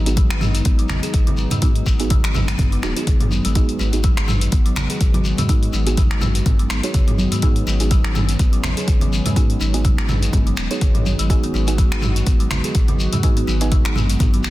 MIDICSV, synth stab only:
0, 0, Header, 1, 2, 480
1, 0, Start_track
1, 0, Key_signature, 5, "minor"
1, 0, Tempo, 483871
1, 1608, Time_signature, 4, 2, 24, 8
1, 14385, End_track
2, 0, Start_track
2, 0, Title_t, "Synth stab"
2, 0, Program_c, 0, 62
2, 62, Note_on_c, 0, 63, 73
2, 62, Note_on_c, 0, 68, 85
2, 63, Note_on_c, 0, 59, 80
2, 63, Note_on_c, 0, 66, 73
2, 1583, Note_off_c, 0, 59, 0
2, 1583, Note_off_c, 0, 63, 0
2, 1583, Note_off_c, 0, 66, 0
2, 1583, Note_off_c, 0, 68, 0
2, 1609, Note_on_c, 0, 59, 83
2, 1609, Note_on_c, 0, 63, 75
2, 1609, Note_on_c, 0, 66, 75
2, 1609, Note_on_c, 0, 68, 89
2, 1950, Note_off_c, 0, 63, 0
2, 1951, Note_off_c, 0, 59, 0
2, 1951, Note_off_c, 0, 66, 0
2, 1951, Note_off_c, 0, 68, 0
2, 1981, Note_on_c, 0, 66, 88
2, 1982, Note_on_c, 0, 59, 95
2, 1982, Note_on_c, 0, 63, 89
2, 1982, Note_on_c, 0, 68, 107
2, 2787, Note_off_c, 0, 59, 0
2, 2787, Note_off_c, 0, 63, 0
2, 2787, Note_off_c, 0, 66, 0
2, 2787, Note_off_c, 0, 68, 0
2, 2806, Note_on_c, 0, 59, 83
2, 2806, Note_on_c, 0, 63, 74
2, 2806, Note_on_c, 0, 66, 75
2, 2806, Note_on_c, 0, 68, 91
2, 2909, Note_off_c, 0, 59, 0
2, 2909, Note_off_c, 0, 63, 0
2, 2909, Note_off_c, 0, 66, 0
2, 2909, Note_off_c, 0, 68, 0
2, 2941, Note_on_c, 0, 59, 78
2, 2941, Note_on_c, 0, 63, 73
2, 2941, Note_on_c, 0, 68, 88
2, 2942, Note_on_c, 0, 66, 73
2, 3502, Note_off_c, 0, 59, 0
2, 3502, Note_off_c, 0, 63, 0
2, 3502, Note_off_c, 0, 68, 0
2, 3503, Note_off_c, 0, 66, 0
2, 3526, Note_on_c, 0, 59, 100
2, 3526, Note_on_c, 0, 63, 91
2, 3526, Note_on_c, 0, 66, 92
2, 3526, Note_on_c, 0, 68, 113
2, 3869, Note_off_c, 0, 59, 0
2, 3869, Note_off_c, 0, 63, 0
2, 3869, Note_off_c, 0, 66, 0
2, 3869, Note_off_c, 0, 68, 0
2, 3900, Note_on_c, 0, 59, 80
2, 3900, Note_on_c, 0, 63, 72
2, 3900, Note_on_c, 0, 66, 74
2, 3900, Note_on_c, 0, 68, 88
2, 5422, Note_off_c, 0, 59, 0
2, 5422, Note_off_c, 0, 63, 0
2, 5422, Note_off_c, 0, 66, 0
2, 5422, Note_off_c, 0, 68, 0
2, 5446, Note_on_c, 0, 66, 74
2, 5446, Note_on_c, 0, 68, 90
2, 5447, Note_on_c, 0, 59, 81
2, 5447, Note_on_c, 0, 63, 74
2, 5789, Note_off_c, 0, 63, 0
2, 5789, Note_off_c, 0, 66, 0
2, 5789, Note_off_c, 0, 68, 0
2, 5790, Note_off_c, 0, 59, 0
2, 5820, Note_on_c, 0, 59, 97
2, 5820, Note_on_c, 0, 63, 86
2, 5821, Note_on_c, 0, 66, 88
2, 5821, Note_on_c, 0, 68, 105
2, 6749, Note_off_c, 0, 59, 0
2, 6749, Note_off_c, 0, 63, 0
2, 6749, Note_off_c, 0, 66, 0
2, 6750, Note_off_c, 0, 68, 0
2, 6780, Note_on_c, 0, 59, 78
2, 6780, Note_on_c, 0, 63, 69
2, 6780, Note_on_c, 0, 66, 69
2, 6781, Note_on_c, 0, 73, 82
2, 7341, Note_off_c, 0, 59, 0
2, 7342, Note_off_c, 0, 63, 0
2, 7342, Note_off_c, 0, 66, 0
2, 7342, Note_off_c, 0, 73, 0
2, 7365, Note_on_c, 0, 63, 92
2, 7366, Note_on_c, 0, 59, 102
2, 7366, Note_on_c, 0, 66, 94
2, 7366, Note_on_c, 0, 68, 115
2, 7709, Note_off_c, 0, 59, 0
2, 7709, Note_off_c, 0, 63, 0
2, 7709, Note_off_c, 0, 66, 0
2, 7709, Note_off_c, 0, 68, 0
2, 7740, Note_on_c, 0, 59, 79
2, 7740, Note_on_c, 0, 63, 72
2, 7740, Note_on_c, 0, 66, 73
2, 7740, Note_on_c, 0, 68, 89
2, 9262, Note_off_c, 0, 59, 0
2, 9262, Note_off_c, 0, 63, 0
2, 9262, Note_off_c, 0, 66, 0
2, 9262, Note_off_c, 0, 68, 0
2, 9287, Note_on_c, 0, 59, 82
2, 9287, Note_on_c, 0, 63, 74
2, 9287, Note_on_c, 0, 66, 75
2, 9287, Note_on_c, 0, 68, 92
2, 9629, Note_off_c, 0, 63, 0
2, 9629, Note_off_c, 0, 66, 0
2, 9630, Note_off_c, 0, 59, 0
2, 9630, Note_off_c, 0, 68, 0
2, 9660, Note_on_c, 0, 59, 97
2, 9660, Note_on_c, 0, 66, 89
2, 9660, Note_on_c, 0, 68, 110
2, 9661, Note_on_c, 0, 63, 89
2, 10589, Note_off_c, 0, 59, 0
2, 10589, Note_off_c, 0, 63, 0
2, 10589, Note_off_c, 0, 66, 0
2, 10589, Note_off_c, 0, 68, 0
2, 10621, Note_on_c, 0, 66, 67
2, 10621, Note_on_c, 0, 73, 84
2, 10622, Note_on_c, 0, 59, 76
2, 10622, Note_on_c, 0, 63, 67
2, 11182, Note_off_c, 0, 66, 0
2, 11182, Note_off_c, 0, 73, 0
2, 11183, Note_off_c, 0, 59, 0
2, 11183, Note_off_c, 0, 63, 0
2, 11208, Note_on_c, 0, 59, 102
2, 11208, Note_on_c, 0, 63, 93
2, 11208, Note_on_c, 0, 66, 92
2, 11208, Note_on_c, 0, 68, 113
2, 11550, Note_off_c, 0, 59, 0
2, 11550, Note_off_c, 0, 63, 0
2, 11550, Note_off_c, 0, 66, 0
2, 11550, Note_off_c, 0, 68, 0
2, 11582, Note_on_c, 0, 59, 78
2, 11582, Note_on_c, 0, 68, 88
2, 11583, Note_on_c, 0, 63, 74
2, 11583, Note_on_c, 0, 66, 73
2, 13103, Note_off_c, 0, 59, 0
2, 13103, Note_off_c, 0, 63, 0
2, 13103, Note_off_c, 0, 66, 0
2, 13103, Note_off_c, 0, 68, 0
2, 13130, Note_on_c, 0, 59, 82
2, 13130, Note_on_c, 0, 63, 74
2, 13130, Note_on_c, 0, 66, 75
2, 13130, Note_on_c, 0, 68, 92
2, 13471, Note_off_c, 0, 59, 0
2, 13471, Note_off_c, 0, 63, 0
2, 13471, Note_off_c, 0, 66, 0
2, 13471, Note_off_c, 0, 68, 0
2, 13502, Note_on_c, 0, 63, 90
2, 13502, Note_on_c, 0, 66, 91
2, 13503, Note_on_c, 0, 59, 98
2, 13503, Note_on_c, 0, 68, 108
2, 14385, Note_off_c, 0, 59, 0
2, 14385, Note_off_c, 0, 63, 0
2, 14385, Note_off_c, 0, 66, 0
2, 14385, Note_off_c, 0, 68, 0
2, 14385, End_track
0, 0, End_of_file